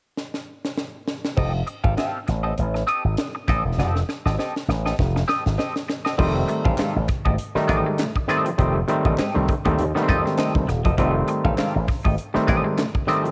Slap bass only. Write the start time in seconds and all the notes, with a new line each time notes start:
1.37 F1
1.84 G#1
2.28 A1
2.59 A1
3.04 G#1
3.49 A1
3.65 E1
3.78 F1
4.25 G#1
4.68 A1
4.99 F1
5.46 G#1
6.19 F1
6.66 A1
6.79 muted slap bass stroke
6.96 A1
7.26 G#1
7.55 muted slap bass stroke
7.69 A1
8.59 F1
9.05 A1
9.19 muted slap bass stroke
9.36 C2
9.65 D#2
9.79 D#2
10.09 F2
10.56 C2
10.68 D#1
10.85 E1
10.98 F1
11.45 A1
11.76 A1
12.05 G#1
12.36 muted slap bass stroke
12.49 A1